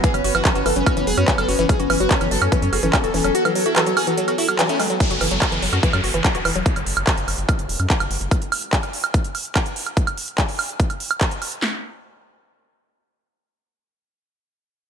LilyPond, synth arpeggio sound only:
\new Staff \with { instrumentName = "Synth arpeggio sound" } { \clef bass \time 4/4 \key fis \minor \tempo 4 = 145 e16 fis16 fis'16 e16 fis16 fis'16 e16 fis16 fis'16 e16 fis16 fis'16 e16 fis16 fis'16 e16 | fis16 fis'16 e16 fis16 fis'16 e16 fis16 fis'16 e16 fis16 fis'16 e16 fis16 fis'16 e16 fis16 | fis'16 e16 fis16 fis'16 e16 fis16 fis'16 e16 fis16 fis'16 fis'16 fis'16 e16 a16 gis16 fis16 | fis16 fis'16 e16 fis16 fis'16 e16 fis16 fis'16 e16 fis16 fis'16 e16 fis16 fis'16 e16 fis16 |
r1 | r1 | r1 | r1 |
r1 | }